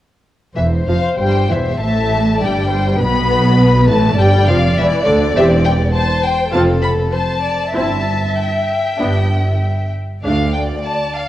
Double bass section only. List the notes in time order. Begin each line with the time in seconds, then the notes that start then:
0.57 E1
0.87 F1
1.18 G1
1.50 E1
1.81 A1
2.42 G1
3.01 B1
3.90 A1
4.19 G1
4.49 F1
4.78 E1
5.07 D2
5.35 E1
6.53 F1
7.75 G1
9.00 G1
10.24 D2